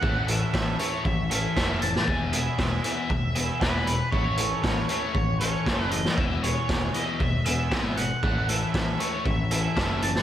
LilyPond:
<<
  \new Staff \with { instrumentName = "Lead electric guitar" } { \time 4/4 \key a \lydian \tempo 4 = 117 fis''8 e''4 cis''8 e''8 e''4 a''8 | gis''8 e''4 e''4. b'4 | cis''4 cis''4. cis''4 dis''8 | e''8 cis''4 dis''8 e''8 e''4 fis''8~ |
fis''8 e''4 cis''8 e''8 e''4 a''8 | }
  \new Staff \with { instrumentName = "Overdriven electric guitar" } { \time 4/4 \key a \lydian r8 <cis' e' a'>8 <cis' e' a'>8 r4 <cis' e' a'>8 <cis' e' a'>8 r8 | r8 <b e' gis'>8 <b e' gis'>8 r4 <b e' gis'>8 <b e' gis'>8 r8 | r8 <cis' e' a'>8 <cis' e' a'>8 r4 <cis' e' a'>8 <cis' e' a'>8 r8 | r8 <b e' gis'>8 <b e' gis'>8 r4 <b e' gis'>8 <b e' gis'>8 r8 |
r8 <cis' e' a'>8 <cis' e' a'>8 r4 <cis' e' a'>8 <cis' e' a'>8 r8 | }
  \new Staff \with { instrumentName = "Overdriven electric guitar" } { \clef bass \time 4/4 \key a \lydian <a, e a>8 <a, e>8 <a, e>8 <a, e a>8 <a, e>8 <a, e>8 <a, e a>8 <a, e>8 | <e, b, e>8 <e, b,>8 <e, b,>8 <e, b, e>8 <e, b,>8 <e, b,>8 <e, b, e>8 <e, b,>8 | <a, e a>8 <a, e>8 <a, e>8 <a, e a>8 <a, e>8 <a, e>8 <a, e a>8 <a, e>8 | <e, b, e>8 <e, b,>8 <e, b,>8 <e, b, e>8 <e, b,>8 <e, b,>8 <e, b, e>8 <e, b,>8 |
<a, e a>8 <a, e>8 <a, e>8 <a, e a>8 <a, e>8 <a, e>8 <a, e a>8 <a, e>8 | }
  \new Staff \with { instrumentName = "Picked electric bass" } { \clef bass \time 4/4 \key a \lydian a,,4 a,,8 r8 a,,4 f,,4 | e,,4 e,,8 r8 e,,4 e,,4 | a,,4 a,,8 r8 a,,4 fis,,4 | e,,4 e,,8 r8 e,,4 gis,,4 |
a,,4 a,,8 r8 a,,4 fis,,4 | }
  \new DrumStaff \with { instrumentName = "Drums" } \drummode { \time 4/4 bd8 hh8 <bd sn>8 hh8 bd8 hh8 <bd sn>8 hh16 sn16 | bd8 hh8 <bd sn>8 hh8 bd8 hh8 <bd sn>8 hh8 | bd8 hh8 <bd sn>8 hh8 bd8 hh8 <bd sn>8 hh16 sn16 | bd8 hh8 <bd sn>8 hh8 bd8 hh8 <bd sn>8 hh8 |
bd8 hh8 <bd sn>8 hh8 bd8 hh8 <bd sn>8 hh16 sn16 | }
>>